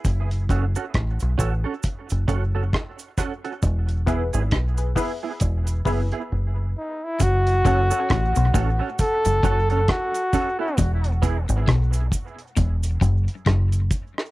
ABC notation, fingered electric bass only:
X:1
M:4/4
L:1/16
Q:"Swing 16ths" 1/4=67
K:F#m
V:1 name="Fingered electric bass" clef=bass
F,,,2 F,,, z A,,, B,,, A,,, z2 F,,, F,,,2 z4 | E,,,3 G,,, B,,,2 z2 E,,,2 F,,, z F,,,2 z2 | F,,,2 F,,, z A,,, B,,, A,,, z2 F,,, F,,,2 z4 | E,,,3 G,,, B,,,2 z2 E,,,2 F,,, z F,,,2 z2 |]